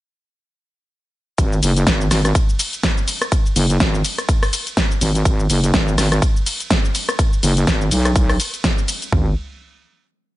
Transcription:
1.38 wobble bass G#1, kick, closed hi-hat, ride, shaker
1.53 shaker
1.62 wobble bass F#1, open hi-hat, ride, shaker
1.77 closed hi-hat, shaker
1.87 wobble bass G#1, kick, snare, closed hi-hat, ride, shaker
2.01 shaker
2.11 wobble bass G#1, cross-stick, snare, open hi-hat, ride, shaker
2.25 cross-stick, closed hi-hat, shaker
2.35 kick, closed hi-hat, ride, shaker
2.49 shaker
2.59 open hi-hat, ride, shaker
2.73 closed hi-hat, shaker
2.83 kick, snare, closed hi-hat, ride, shaker
2.98 shaker
3.08 open hi-hat, ride, shaker
3.22 cross-stick, closed hi-hat, shaker
3.32 kick, closed hi-hat, ride, shaker
3.46 shaker
3.56 wobble bass F#1, open hi-hat, ride, shaker
3.70 closed hi-hat, shaker
3.80 wobble bass G#1, kick, snare, closed hi-hat, ride, shaker
3.94 shaker
4.05 open hi-hat, ride, shaker
4.18 cross-stick, closed hi-hat, shaker
4.29 kick, closed hi-hat, ride, shaker
4.43 cross-stick, open hi-hat, shaker
4.53 open hi-hat, ride, shaker
4.67 closed hi-hat, shaker
4.77 kick, snare, closed hi-hat, ride, shaker
4.91 shaker
5.01 wobble bass G#1, open hi-hat, ride, shaker
5.15 closed hi-hat, shaker
5.25 wobble bass G#1, kick, closed hi-hat, ride, shaker
5.40 shaker
5.50 wobble bass F#1, open hi-hat, ride, shaker
5.64 closed hi-hat, shaker
5.74 wobble bass G#1, kick, snare, closed hi-hat, ride, shaker
5.88 shaker
5.98 wobble bass G#1, cross-stick, snare, open hi-hat, ride, shaker
6.12 cross-stick, closed hi-hat, shaker
6.22 kick, closed hi-hat, ride, shaker
6.36 shaker
6.46 open hi-hat, ride, shaker
6.60 closed hi-hat, shaker
6.71 kick, snare, closed hi-hat, ride, shaker
6.85 shaker
6.95 open hi-hat, ride, shaker
7.09 cross-stick, closed hi-hat, shaker
7.19 kick, closed hi-hat, ride, shaker
7.33 shaker
7.43 wobble bass F#1, open hi-hat, ride, shaker
7.57 closed hi-hat, shaker
7.67 wobble bass G#1, kick, snare, closed hi-hat, ride, shaker
7.81 shaker
7.91 wobble bass B1, open hi-hat, ride, shaker
8.05 cross-stick, closed hi-hat, shaker
8.16 kick, closed hi-hat, ride, shaker
8.30 cross-stick, open hi-hat, shaker
8.40 open hi-hat, ride, shaker
8.54 closed hi-hat, shaker
8.64 kick, snare, closed hi-hat, ride, shaker
8.78 shaker
8.88 open hi-hat, ride, shaker
9.02 closed hi-hat, shaker
9.12 wobble bass G#1, kick, floor tom

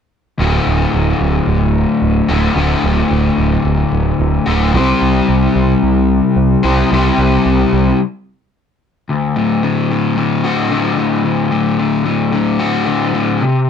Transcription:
0.38 picked electric bass D1, overdriven electric guitar D2 A2 D3 A3 F#4
0.67 picked electric bass D1
0.94 picked electric bass D1
1.20 picked electric bass D1
1.47 picked electric bass D1
2.02 picked electric bass D1
2.28 picked electric bass D1, overdriven electric guitar D2 A2 D3 A3 F#4
2.54 picked electric bass D1, overdriven electric guitar D2 A2 D3 A3 F#4
2.84 picked electric bass D1
3.11 picked electric bass D1
3.38 picked electric bass D1
3.65 picked electric bass D1
3.92 picked electric bass D1
4.20 picked electric bass D1
4.46 picked electric bass D1, overdriven electric guitar D2 A2 D3 A3 F#4
4.73 picked electric bass C2, overdriven electric guitar C3 G3 C4 E4 G4 C5
5.02 picked electric bass C2
5.29 picked electric bass C2
5.56 picked electric bass C2
5.83 picked electric bass C2
6.37 picked electric bass C2
6.63 picked electric bass C2, overdriven electric guitar C3 G3 C4 E4 G4 C5
6.91 picked electric bass C2, overdriven electric guitar C3 G3 C4 E4 G4 C5
7.18 picked electric bass C2
7.46 picked electric bass C2
7.73 picked electric bass C2
9.09 overdriven electric guitar D2
9.36 overdriven electric guitar A2
9.63 overdriven electric guitar D3
9.91 overdriven electric guitar A2
10.17 overdriven electric guitar D3
10.44 overdriven electric guitar F#4
10.71 overdriven electric guitar D3
10.98 overdriven electric guitar A2
11.24 overdriven electric guitar D2
11.52 overdriven electric guitar A2
11.79 overdriven electric guitar D3
12.06 overdriven electric guitar A2
12.32 overdriven electric guitar D3
12.59 overdriven electric guitar F#4
12.86 overdriven electric guitar D3
13.14 overdriven electric guitar A2
13.42 overdriven electric guitar C3

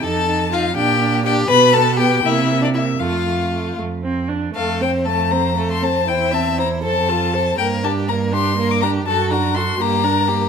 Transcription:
0.02 cello F2, viola D#4, violin A4 A5
0.28 viola D#4
0.52 viola D#4, violin F4 F5
0.75 cello A#2, viola D4, violin G4 G5
1.01 viola D4
1.25 viola D4, violin G4 G5
1.48 cello B2, viola B3, violin B4 B5
1.74 viola B3, violin A4 A5
1.97 viola B3, violin G4 G5
2.23 cello C3, viola A#3, violin E4 E5
2.49 viola A#3
2.62 violin D4 D5
2.74 viola A#3, violin E4 E5
2.99 cello F2, viola A3, violin F4 F5
3.27 viola A3
3.52 viola A3
3.76 cello F2, viola A3
4.03 viola C4
4.28 viola D4
4.54 cello F2, viola A3, violin A4 F5
4.80 viola C4, violin C5 G5
5.05 viola A3, violin A4 A5
5.31 viola C4, violin C5 A#5
5.57 viola A3, violin A4
5.71 violin C6
5.82 viola C4, violin C5 A5
6.07 cello E2, viola E4, violin C5 G5
6.31 viola C4, violin E5 A5
6.58 viola E4, violin C5 A#5
6.83 cello F2, viola A4, violin C5 A5
7.08 viola F4, violin A4
7.33 viola A4, violin C5
7.57 cello G2, viola A#3, violin A#4 G5
7.83 viola D4, violin G4 A5
8.09 viola A#3, violin A#4 A#5
8.32 viola D4, violin G4 C6
8.58 viola A#3, violin A#4
8.71 violin D6
8.82 viola D4, violin G4 A#5
9.05 cello F#2, viola F#4, violin A4 A5
9.31 viola D4, violin F#4 A#5
9.55 viola F#4, violin A4 C6
9.79 cello G2, viola A#3, violin G4 A#5
10.03 viola D4, violin A#4
10.28 viola A#3, violin G4

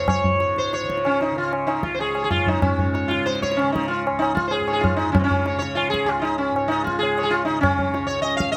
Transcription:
Already playing: tanpura C#2 G#2 C#3
0.08 sitar C#5, tabla na, tabla ge
0.24 tabla ge
0.35 tanpura G#2
0.40 sitar C#5, tabla te
0.56 sitar C5, tabla te
0.73 sitar C#5, tabla te
0.81 tanpura C#3, tabla te
0.90 tabla ke
0.97 tabla te
1.05 sitar C#4, tabla na
1.21 sitar D#4, tabla te
1.31 tanpura C#3
1.37 sitar F4, tabla tin
1.51 sitar C#5, tabla na
1.67 sitar D#4 C#5, tabla na
1.83 tanpura C#2, sitar F4, tabla ke
1.94 sitar C5
1.99 sitar G#4 C#5, tabla tin
2.15 sitar C#5, tabla na
2.24 sitar G#4
2.31 tanpura G#2, sitar F4 C#5, tabla na, tabla ge
2.47 sitar D#4 C#5, tabla ge
2.62 tanpura G#2, sitar C#4, tabla na, tabla ge
2.79 sitar C#5, tabla ge
2.94 sitar C#5, tabla te
3.08 sitar F4, tabla te
3.14 tanpura C#3
3.26 sitar C5, tabla te
3.35 tabla te
3.42 sitar C#5, tabla ke
3.52 tabla te
3.56 sitar C#4, tabla na
3.62 tanpura C#3
3.72 sitar D#4, tabla ke
3.83 tabla te
3.88 sitar F4, tabla tin
4.06 sitar C#5, tabla na
4.11 tanpura C#2
4.19 sitar D#4, tabla na
4.35 sitar F4, tabla ke
4.48 sitar G#4 C5
4.52 tabla tin
4.60 tanpura G#2
4.67 sitar C#5, tabla na
4.73 sitar G#4
4.81 sitar F4, tabla na, tabla ge
4.96 sitar D#4, tabla te
5.09 tanpura C#3, sitar C#4
5.15 tabla na, tabla ge
5.19 sitar C4
5.24 sitar C#4
5.31 tabla ge
5.46 sitar C#5, tabla te
5.57 tanpura C#3, sitar C#5
5.62 tabla te
5.75 sitar F4, tabla na
5.90 sitar G#4, tabla ke
6.04 tanpura C#2, sitar F4
6.09 tabla na
6.19 sitar D#4 F4
6.25 tabla te
6.38 sitar C#4, tabla tin
6.52 tanpura G#2, tabla na
6.57 sitar C#5
6.68 sitar D#4, tabla na
6.84 sitar F4, tabla ke
6.99 tanpura C#3, sitar G#4
7.03 tabla tin
7.18 sitar C#5, tabla na
7.23 sitar G#4
7.30 sitar F4, tabla na
7.45 tanpura C#3, sitar D#4, tabla te
7.61 sitar C#4, tabla na, tabla ge
7.78 sitar C#5, tabla ge
7.94 sitar C#5, tabla te
7.98 tanpura C#2
8.07 sitar C#5, tabla te
8.22 sitar D#5, tabla na
8.37 sitar F5, tabla ke
8.45 tanpura G#2
8.52 sitar D#5

